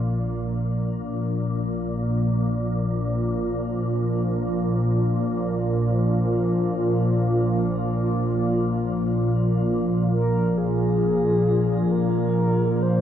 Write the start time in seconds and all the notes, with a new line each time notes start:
Already playing: A#1 A#2 F3 F4
10.07 A#1 A#2 A#4
10.58 G#4
11.91 A#4
12.82 C5